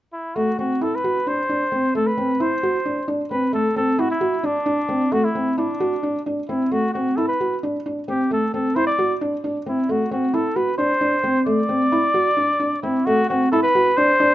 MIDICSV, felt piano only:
0, 0, Header, 1, 2, 480
1, 0, Start_track
1, 0, Tempo, 453858
1, 380, Time_signature, 7, 3, 24, 8
1, 15171, End_track
2, 0, Start_track
2, 0, Title_t, "Felt piano"
2, 0, Program_c, 0, 0
2, 378, Note_on_c, 0, 57, 64
2, 510, Note_off_c, 0, 57, 0
2, 620, Note_on_c, 0, 60, 50
2, 752, Note_off_c, 0, 60, 0
2, 860, Note_on_c, 0, 64, 59
2, 992, Note_off_c, 0, 64, 0
2, 1101, Note_on_c, 0, 66, 55
2, 1234, Note_off_c, 0, 66, 0
2, 1339, Note_on_c, 0, 62, 53
2, 1471, Note_off_c, 0, 62, 0
2, 1580, Note_on_c, 0, 62, 58
2, 1711, Note_off_c, 0, 62, 0
2, 1817, Note_on_c, 0, 60, 53
2, 1950, Note_off_c, 0, 60, 0
2, 2062, Note_on_c, 0, 57, 63
2, 2193, Note_off_c, 0, 57, 0
2, 2300, Note_on_c, 0, 60, 57
2, 2431, Note_off_c, 0, 60, 0
2, 2540, Note_on_c, 0, 64, 62
2, 2670, Note_off_c, 0, 64, 0
2, 2783, Note_on_c, 0, 66, 57
2, 2913, Note_off_c, 0, 66, 0
2, 3019, Note_on_c, 0, 62, 56
2, 3150, Note_off_c, 0, 62, 0
2, 3256, Note_on_c, 0, 62, 64
2, 3387, Note_off_c, 0, 62, 0
2, 3498, Note_on_c, 0, 60, 56
2, 3628, Note_off_c, 0, 60, 0
2, 3731, Note_on_c, 0, 57, 69
2, 3863, Note_off_c, 0, 57, 0
2, 3978, Note_on_c, 0, 60, 53
2, 4107, Note_off_c, 0, 60, 0
2, 4215, Note_on_c, 0, 64, 65
2, 4345, Note_off_c, 0, 64, 0
2, 4450, Note_on_c, 0, 66, 59
2, 4581, Note_off_c, 0, 66, 0
2, 4690, Note_on_c, 0, 62, 62
2, 4820, Note_off_c, 0, 62, 0
2, 4927, Note_on_c, 0, 62, 66
2, 5058, Note_off_c, 0, 62, 0
2, 5168, Note_on_c, 0, 60, 59
2, 5299, Note_off_c, 0, 60, 0
2, 5412, Note_on_c, 0, 57, 72
2, 5542, Note_off_c, 0, 57, 0
2, 5659, Note_on_c, 0, 60, 54
2, 5788, Note_off_c, 0, 60, 0
2, 5897, Note_on_c, 0, 64, 60
2, 6027, Note_off_c, 0, 64, 0
2, 6137, Note_on_c, 0, 66, 60
2, 6268, Note_off_c, 0, 66, 0
2, 6377, Note_on_c, 0, 62, 57
2, 6509, Note_off_c, 0, 62, 0
2, 6623, Note_on_c, 0, 62, 56
2, 6754, Note_off_c, 0, 62, 0
2, 6864, Note_on_c, 0, 60, 56
2, 6996, Note_off_c, 0, 60, 0
2, 7101, Note_on_c, 0, 57, 63
2, 7235, Note_off_c, 0, 57, 0
2, 7351, Note_on_c, 0, 60, 54
2, 7482, Note_off_c, 0, 60, 0
2, 7589, Note_on_c, 0, 64, 63
2, 7721, Note_off_c, 0, 64, 0
2, 7831, Note_on_c, 0, 66, 52
2, 7963, Note_off_c, 0, 66, 0
2, 8071, Note_on_c, 0, 62, 57
2, 8202, Note_off_c, 0, 62, 0
2, 8311, Note_on_c, 0, 62, 54
2, 8442, Note_off_c, 0, 62, 0
2, 8546, Note_on_c, 0, 60, 58
2, 8678, Note_off_c, 0, 60, 0
2, 8787, Note_on_c, 0, 57, 65
2, 8918, Note_off_c, 0, 57, 0
2, 9030, Note_on_c, 0, 60, 53
2, 9160, Note_off_c, 0, 60, 0
2, 9265, Note_on_c, 0, 64, 64
2, 9396, Note_off_c, 0, 64, 0
2, 9504, Note_on_c, 0, 66, 58
2, 9634, Note_off_c, 0, 66, 0
2, 9743, Note_on_c, 0, 62, 59
2, 9873, Note_off_c, 0, 62, 0
2, 9983, Note_on_c, 0, 62, 57
2, 10113, Note_off_c, 0, 62, 0
2, 10220, Note_on_c, 0, 60, 55
2, 10350, Note_off_c, 0, 60, 0
2, 10461, Note_on_c, 0, 57, 68
2, 10589, Note_off_c, 0, 57, 0
2, 10696, Note_on_c, 0, 60, 57
2, 10824, Note_off_c, 0, 60, 0
2, 10932, Note_on_c, 0, 64, 62
2, 11060, Note_off_c, 0, 64, 0
2, 11168, Note_on_c, 0, 66, 58
2, 11297, Note_off_c, 0, 66, 0
2, 11405, Note_on_c, 0, 62, 62
2, 11534, Note_off_c, 0, 62, 0
2, 11643, Note_on_c, 0, 62, 60
2, 11772, Note_off_c, 0, 62, 0
2, 11883, Note_on_c, 0, 60, 62
2, 12011, Note_off_c, 0, 60, 0
2, 12123, Note_on_c, 0, 57, 69
2, 12251, Note_off_c, 0, 57, 0
2, 12362, Note_on_c, 0, 60, 57
2, 12490, Note_off_c, 0, 60, 0
2, 12607, Note_on_c, 0, 64, 63
2, 12734, Note_off_c, 0, 64, 0
2, 12841, Note_on_c, 0, 66, 59
2, 12970, Note_off_c, 0, 66, 0
2, 13081, Note_on_c, 0, 62, 58
2, 13211, Note_off_c, 0, 62, 0
2, 13322, Note_on_c, 0, 62, 56
2, 13454, Note_off_c, 0, 62, 0
2, 13572, Note_on_c, 0, 60, 57
2, 13703, Note_off_c, 0, 60, 0
2, 13820, Note_on_c, 0, 57, 74
2, 13949, Note_off_c, 0, 57, 0
2, 14066, Note_on_c, 0, 60, 61
2, 14193, Note_off_c, 0, 60, 0
2, 14305, Note_on_c, 0, 64, 74
2, 14432, Note_off_c, 0, 64, 0
2, 14543, Note_on_c, 0, 66, 68
2, 14671, Note_off_c, 0, 66, 0
2, 14781, Note_on_c, 0, 62, 69
2, 14909, Note_off_c, 0, 62, 0
2, 15017, Note_on_c, 0, 62, 72
2, 15145, Note_off_c, 0, 62, 0
2, 15171, End_track
0, 0, End_of_file